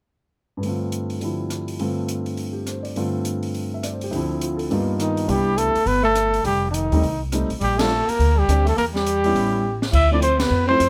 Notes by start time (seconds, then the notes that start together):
0.57 G2 D3
0.63 A3 C4, open hi-hat
0.69 F4
0.92 closed hi-hat
1.10 open hi-hat
1.21 D3 F3 G3 E4, open hi-hat
1.50 cross-stick, closed hi-hat
1.68 open hi-hat
1.79 G2 D3 A3 C4 F4, open hi-hat
2.08 closed hi-hat
2.26 open hi-hat
2.37 open hi-hat
2.53 G4
2.67 C5, cross-stick, closed hi-hat
2.83 D5, open hi-hat
2.96 G2 D3 A3 C4 F4, open hi-hat
3.25 closed hi-hat
3.43 open hi-hat
3.54 open hi-hat
3.74 E5
3.83 D5, cross-stick, closed hi-hat
3.93 C5
4.01 G4, open hi-hat
4.11 D2 D3 F3 C4, open hi-hat
4.16 E4
4.41 F4, closed hi-hat
4.57 A4, open hi-hat
4.70 G2 G3 A#3 B3 D#4 F4, open hi-hat
4.99 D#3 D#4, cross-stick, closed hi-hat
5.17 open hi-hat
5.27 C2 G3 B3 D4 E4 G4, open hi-hat
5.57 A3 A4, closed hi-hat
5.75 muted upright bass stroke, open hi-hat
5.85 G1 B3 B4, open hi-hat
6.03 A3 A4
6.15 cross-stick, closed hi-hat
6.34 open hi-hat
6.43 F1 G3 G4, open hi-hat
6.69 D3 D4
6.74 D#3 D#4, closed hi-hat
6.91 D#2 G3 A3 C4 D#4, open hi-hat
7.02 C2, open hi-hat
7.32 G3 A3 C4 D#4, cross-stick, closed hi-hat
7.50 B1, open hi-hat
7.60 A#1 G3 G4, open hi-hat
7.77 G3 A3 C4 D4 F4 A4, snare, ride
8.06 A#3 A#4, muted upright bass stroke, open hi-hat
8.19 D2, open hi-hat
8.36 G3 G4
8.48 D2 G3 C4 D4 G4, cross-stick, closed hi-hat
8.65 A3 A4, open hi-hat
8.76 E2 A#3 A#4, open hi-hat
8.94 G3 G4, snare
9.06 closed hi-hat
9.24 G3 B3 C#4 E4, open hi-hat
9.35 A1, open hi-hat
9.82 snare
9.91 D2 E4 E5, kick, crash
10.11 F3 A3 C4 D4 E4 D5
10.20 C4 C5, closed hi-hat
10.37 B3 B4, snare, ride
10.50 F2
10.66 F3 A3 C4 C5
10.71 E4
10.80 F#2, cross-stick, closed hi-hat